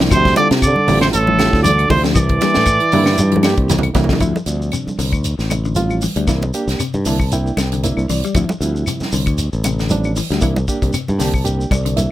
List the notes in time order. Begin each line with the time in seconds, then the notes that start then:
Already playing: A#3 D4 E4
0.00 F3, snare
0.11 D2 C3 F3 C5, kick, closed hi-hat, claves, shekere
0.25 kick, snare, closed hi-hat, high conga
0.36 D3 G3 C4 E4 F4 G4 D5, closed hi-hat, high conga, shekere
0.51 C3, snare, closed hi-hat
0.62 D3 D5, kick, closed hi-hat, claves, shekere
0.76 high conga
0.88 A1 D3 C4 E4 F4 G4, open hi-hat, high conga, low conga, shekere
1.01 C3 C5, snare, closed hi-hat, claves
1.13 A1 A2 A4, closed hi-hat, shekere
1.27 F3, high conga
1.38 C4 E4 F4 G4, snare, closed hi-hat, low conga, claves, shekere
1.53 D2, kick, snare
1.63 D3 E3 D5, closed hi-hat, high conga, shekere
1.78 closed hi-hat, claves
1.90 D2 C3 E3 C4 E4 F4 G4 C5, kick, open hi-hat, high conga, low conga, shekere
2.04 F3, snare, closed hi-hat
2.15 C2 E3 D5, kick, closed hi-hat, claves, shekere
2.29 kick, closed hi-hat
2.41 G3 A#3 D4 E4, snare, closed hi-hat, high conga, shekere
2.54 A2, snare
2.65 kick, closed hi-hat, claves, shekere
2.80 closed hi-hat
2.92 G2 D3 A#3 D4 E4, open hi-hat, high conga, low conga, shekere
3.06 snare, claves
3.18 G2, closed hi-hat, high conga, shekere
3.32 F3, closed hi-hat
3.36 high conga
3.43 A#3 D4 G4, snare, closed hi-hat, high conga, claves, shekere
3.57 C2, kick, closed hi-hat
3.69 E3, snare, closed hi-hat, low conga, shekere
3.79 low conga
3.83 closed hi-hat, claves
3.94 C2 E3 A#3 D4 E4, kick, snare, closed hi-hat, low conga, shekere
4.04 low conga
4.09 F3, kick, snare, low conga
4.20 D2 F3 G3 C4 E4, kick, closed hi-hat, claves, shekere
4.36 high conga, shekere
4.46 D2 F3 G3 C4 D4, closed hi-hat, shekere
4.62 shekere
4.71 C3, closed hi-hat, high conga, claves, shekere
4.87 muted fingered electric bass stroke, high conga, shekere
4.99 C2 D3, open hi-hat, shekere
5.13 D2, kick, closed hi-hat, claves, shekere
5.24 closed hi-hat, high conga, shekere
5.39 A1, snare, shekere
5.50 C3, closed hi-hat, high conga, claves, shekere
5.65 D3, shekere
5.75 F3 G3 C4 F4, closed hi-hat, high conga, shekere
5.90 claves, shekere
6.01 E3, open hi-hat, high conga, shekere
6.16 D2 G3, closed hi-hat, shekere
6.27 C2 E3 A#3 D4 E4, kick, snare, closed hi-hat, high conga, claves, shekere
6.42 high conga, shekere
6.54 A#3 D4 G4, closed hi-hat, shekere
6.67 C2, snare, closed hi-hat, shekere
6.79 C3, muted fingered electric bass stroke, closed hi-hat, high conga, claves, shekere
6.94 G2, high conga, shekere
7.05 C2 D3 A#3 D4 E4 A5, open hi-hat, shekere
7.19 kick, claves, shekere
7.32 A#3 D4 E4 G5, closed hi-hat, high conga, shekere
7.47 shekere
7.57 C2 C3, snare, closed hi-hat, high conga, claves, shekere
7.72 D3, closed hi-hat, shekere
7.83 A#3 D4 E4 E5, closed hi-hat, high conga, shekere
7.97 C2, claves, shekere
8.09 C2 E3 D5, open hi-hat, shekere
8.24 G3, closed hi-hat, shekere
8.34 D2 F3 G3 C4 E4, kick, closed hi-hat, high conga, claves, shekere
8.49 high conga, shekere
8.61 D2 F3 G3 C4 E4, closed hi-hat, shekere
8.76 shekere
8.86 C3, closed hi-hat, high conga, claves, shekere
9.00 muted fingered electric bass stroke, snare, high conga, shekere
9.12 C2 D3, open hi-hat, shekere
9.26 D2, kick, closed hi-hat, claves, shekere
9.38 closed hi-hat, high conga, shekere
9.53 A1, shekere
9.64 C3, closed hi-hat, high conga, claves, shekere
9.79 D3, snare, shekere
9.89 F3 G3 C4 D4, closed hi-hat, high conga, shekere
10.04 claves, shekere
10.16 E3, open hi-hat, shekere
10.30 D2 G3, snare, closed hi-hat, shekere
10.41 C2 E3 A#3 D4 E4, kick, closed hi-hat, high conga, claves, shekere
10.56 high conga, shekere
10.68 A#3 D4 G4, kick, closed hi-hat, shekere
10.82 C2, kick, closed hi-hat, high conga, shekere
10.93 C3, closed hi-hat, high conga, claves, shekere
11.08 G2, high conga, shekere
11.18 C2 D3 A#3 D4 G4 A5, snare, open hi-hat, shekere
11.34 kick, claves, shekere
11.44 A#3 D4 G4 G5, closed hi-hat, high conga, shekere
11.61 shekere
11.71 C2 C3 D5, kick, closed hi-hat, high conga, claves, shekere
11.85 D3, closed hi-hat, shekere
11.96 A#3 D4 E4 E5, closed hi-hat, high conga, shekere